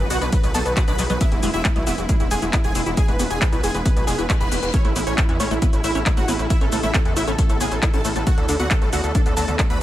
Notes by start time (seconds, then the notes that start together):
Already playing: D3 F#3 B3 G#4
0.10 B1 F#4 F#5, open hi-hat, shaker
0.22 B1 D4 B4, closed hi-hat, shaker
0.32 F#3 B4, kick, closed hi-hat, shaker
0.44 B1 F#3 B4, closed hi-hat, shaker
0.54 B1 B3 A4 A5, open hi-hat, shaker
0.66 B1 B4, closed hi-hat, shaker
0.77 F#4 B4, kick, clap, closed hi-hat, shaker
0.88 B1 D4 B4 B5, closed hi-hat, shaker
0.99 B1 F#3 B4, open hi-hat, shaker
1.10 B1 F#3 B4, closed hi-hat, shaker
1.21 B2 E3 G#3 B3 E4 E5, kick, closed hi-hat, shaker
1.32 E1 E4, closed hi-hat
1.43 E1 G#3 E4, open hi-hat, shaker
1.54 E1 E4 E5, closed hi-hat, shaker
1.65 G#3, kick, clap, closed hi-hat, shaker
1.76 B1 G#3 E4, closed hi-hat
1.87 E1 B3 E4 E5, open hi-hat, shaker
1.98 E1 E4, closed hi-hat, shaker
2.09 G#3 E4, kick, closed hi-hat, shaker
2.20 E1 E4, closed hi-hat, shaker
2.31 E1 G#3 G#4 G#5, open hi-hat, shaker
2.42 E1 G#3 E4, closed hi-hat, shaker
2.53 B3 E4, kick, clap, closed hi-hat, shaker
2.64 E1 G#4 G#5, closed hi-hat, shaker
2.75 E1 G#3 E4, open hi-hat, shaker
2.86 E1 E4, closed hi-hat, shaker
2.97 G#3 G#4 G#5, kick, closed hi-hat, shaker
3.08 E1 G#3 B4, closed hi-hat
3.19 E1 B3 B4, open hi-hat, shaker
3.30 E1 G#4 G#5, closed hi-hat, shaker
3.41 G#3 B4, kick, clap, closed hi-hat, shaker
3.52 B1 E4 B4, closed hi-hat, shaker
3.63 E1 G#3 G#4 G#5, open hi-hat, shaker
3.74 E1 G#3 B4, closed hi-hat, shaker
3.85 B3 B4, kick, closed hi-hat, reverse cymbal, shaker
3.96 B1 B4, closed hi-hat, shaker
4.07 E1 G#3 G#4 G#5, open hi-hat, shaker
4.18 E1 E4 B4, closed hi-hat, shaker
4.29 G#3 B4, kick, clap, closed hi-hat, shaker
4.40 E1 G#3 B4 B5, closed hi-hat, shaker
4.51 E1 B3 B4, open hi-hat, shaker
4.63 E1 B4, closed hi-hat, shaker
4.74 C#3 A3 B3 C#4 C#5, kick, closed hi-hat, shaker
4.85 A1 A3 E4, closed hi-hat
4.96 A1 B3 E4, open hi-hat, shaker
5.07 A1 C#4 C#5, closed hi-hat, shaker
5.18 E4, kick, clap, closed hi-hat, shaker
5.29 E2 C#4 E4, closed hi-hat
5.40 A1 A3 C#4 C#5, open hi-hat, shaker
5.51 A1 A3 E4, closed hi-hat, shaker
5.62 B3 E4, kick, closed hi-hat, shaker
5.73 A1 E4, closed hi-hat, shaker
5.84 A1 E4 E5, open hi-hat, shaker
5.95 A1 C#4 E4, closed hi-hat, shaker
6.06 A3 E4, kick, clap, closed hi-hat, shaker
6.17 A1 A3 F#4 F#5, closed hi-hat, shaker
6.28 A1 B3 E4, open hi-hat, shaker
6.39 A1 E4, closed hi-hat, shaker
6.50 E4 E5, kick, closed hi-hat, shaker
6.61 A1 C#4 A4, closed hi-hat
6.72 A1 A3 A4, open hi-hat, shaker
6.83 A1 A3 E4 E5, closed hi-hat, shaker
6.94 B3 A4, kick, clap, closed hi-hat, shaker
7.05 E2 A4, closed hi-hat
7.16 A1 E4 E5, open hi-hat, shaker
7.27 A1 C#4 A4, closed hi-hat, shaker
7.38 A3 A4, kick, closed hi-hat, shaker
7.49 A1 A3 A4, closed hi-hat, shaker
7.61 A1 B3 G#4 G#5, open hi-hat, shaker
7.72 A1 A4, closed hi-hat, shaker
7.83 E4 A4, kick, clap, closed hi-hat, shaker
7.94 A1 C#4 A4 A5, closed hi-hat, shaker
8.05 A1 A3 A4, open hi-hat, shaker
8.16 A1 A3 A4, closed hi-hat, shaker
8.26 D3 A3 F#4 F#5, kick, closed hi-hat, shaker
8.38 D2 A4, closed hi-hat
8.49 D2 D4 A4, open hi-hat, shaker
8.59 D2 B3 F#4 F#5, closed hi-hat, shaker
8.70 F#3 A4, kick, clap, closed hi-hat, shaker
8.81 A1 F#3 A4, closed hi-hat
8.93 D2 A3 F#4 F#5, open hi-hat, shaker
9.04 D2 A4, closed hi-hat, shaker
9.15 D4 A4, kick, closed hi-hat, shaker
9.26 D2 B3 A4, closed hi-hat, shaker
9.37 D2 F#3 A4 A5, open hi-hat, shaker
9.48 D2 F#3 A4, closed hi-hat, shaker
9.59 A3 A4, kick, clap, closed hi-hat, shaker
9.70 D2 B4 B5, closed hi-hat, shaker